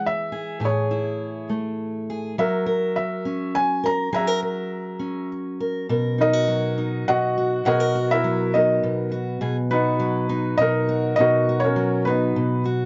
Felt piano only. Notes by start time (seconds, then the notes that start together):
0.06 E5
0.65 G#4 C#5
2.39 A#4 E5
2.96 E5
3.55 G#5
3.86 A#5
4.14 E5 A#5
6.21 D#4 A#4 D#5
7.08 F#4 D#5 F#5
7.66 F#4 A#4 D#5 F#5
8.11 E4 A#4 E5
8.54 D#4 A#4 D#5
9.71 B3 D#4 B4
10.58 A#4 D#5
10.62 D#4
11.16 D#5
11.20 D#4 F#4 A#4
11.60 C#5
11.64 C#4 A#4
12.05 B3 D#4 B4